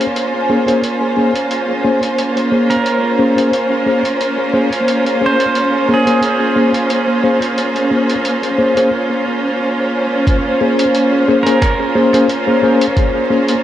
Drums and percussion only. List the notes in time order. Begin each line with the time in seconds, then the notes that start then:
0.01 closed hi-hat
0.16 closed hi-hat
0.68 closed hi-hat
0.84 closed hi-hat
1.36 closed hi-hat
1.51 closed hi-hat
2.03 closed hi-hat
2.18 closed hi-hat
2.37 closed hi-hat
2.71 closed hi-hat
2.86 closed hi-hat
3.38 closed hi-hat
3.53 closed hi-hat
4.05 closed hi-hat
4.21 closed hi-hat
4.73 closed hi-hat
4.88 closed hi-hat
5.06 closed hi-hat
5.40 closed hi-hat
5.55 closed hi-hat
6.07 closed hi-hat
6.23 closed hi-hat
6.74 closed hi-hat
6.90 closed hi-hat
7.42 closed hi-hat
7.58 closed hi-hat
7.76 closed hi-hat
8.10 closed hi-hat
8.25 closed hi-hat
8.43 closed hi-hat
8.77 closed hi-hat
10.27 kick, closed hi-hat
10.79 closed hi-hat
10.95 closed hi-hat
11.47 closed hi-hat
11.62 finger snap, kick, closed hi-hat
12.14 closed hi-hat
12.29 closed hi-hat
12.81 closed hi-hat
12.97 kick, closed hi-hat
13.48 closed hi-hat